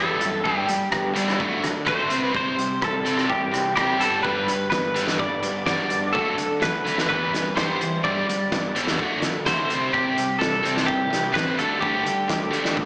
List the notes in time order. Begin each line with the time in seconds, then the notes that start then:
Already playing: E2 E3 G3 B3 G4 A4
0.21 F#2 E3 G3 E4, closed hi-hat
0.44 G2 D3 G3 G4, kick
0.67 G2 D3 G3, closed hi-hat
0.92 G2 D3 B3, kick, cross-stick
1.15 G2 D3 G3 D4, closed hi-hat
1.28 cross-stick
1.40 D2 D3 F#3 A3, kick
1.63 D3 F#3 A3, cross-stick, closed hi-hat
1.85 D2 D3 F#3 A3 E4 C5, kick, cross-stick
2.09 C2 C3 G3 C4, closed hi-hat
2.32 C2 C3 G3 C4, kick
2.36 C5
2.57 C3 G3, closed hi-hat
2.82 C2 C3 G3 A4, kick, cross-stick
3.05 C3 G3 C4 E4, closed hi-hat
3.17 cross-stick
3.28 C2 C3 E3 G3 G4, kick
3.52 C3 G3, cross-stick, closed hi-hat
3.76 C2 C3 G3 C4 G4, kick, cross-stick
3.99 G1 G2 D3 G3 A4, closed hi-hat
4.23 G1 G2 D3 G3 B4, kick
4.47 G2 D3, closed hi-hat
4.70 G1 G2 D3 B3 B4, kick, snare
4.94 G2 D3 G3 D4, closed hi-hat
5.07 snare
5.18 G1 G2 D3 G3 D5, kick
5.43 G2 D3 B3, closed hi-hat
5.66 G1 G2 D3 G3 F#4 D5, kick, snare
5.89 G2 D3 D4, closed hi-hat
6.13 D2 D3 F#3 A3 A4, kick
6.37 D3 F#3, closed hi-hat
6.60 D2 D3 F#3 A3 B4, kick, snare
6.85 D3 F#3 A3 D4, closed hi-hat
6.98 snare
7.08 E2 E3 G3 B3 B4, kick
7.33 E3 G3, snare, closed hi-hat
7.55 E2 E3 G3 B3 G4 C5, kick, snare
7.81 E3 G3 E4, closed hi-hat
8.03 G2 D3 G3 D5, kick
8.29 G2 D3 G3, closed hi-hat
8.52 G2 D3 B3, kick, snare
8.75 E2 G2 D3 G3 D4, closed hi-hat
8.87 snare
8.98 D2 D3 F#3 A3, kick
9.22 D3 F#3 A3, snare, closed hi-hat
9.45 D2 D3 F#3 A3 E4 C5, kick, snare
9.69 C2 C3 G3 C4, closed hi-hat
9.93 C3 G3 C4 G4, kick
10.17 C3 G3, closed hi-hat
10.39 C2 C3 G3 A4, kick, snare
10.63 C3 G3 C4 E4, closed hi-hat
10.77 snare
10.86 C2 C3 E3 G3 G4, kick
11.10 C3 G3, snare, closed hi-hat
11.32 A1 C3 G3 C4 G4 B4, kick
11.36 snare
11.57 D2 D3 G3 A3 A4, closed hi-hat
11.81 D2 D3 G3 A3 G4, kick
12.04 D3 G3, closed hi-hat
12.28 D2 D3 G3 A3, kick, snare
12.51 D3 G3 A3 D4, closed hi-hat
12.65 snare
12.76 D2 D3 G3, kick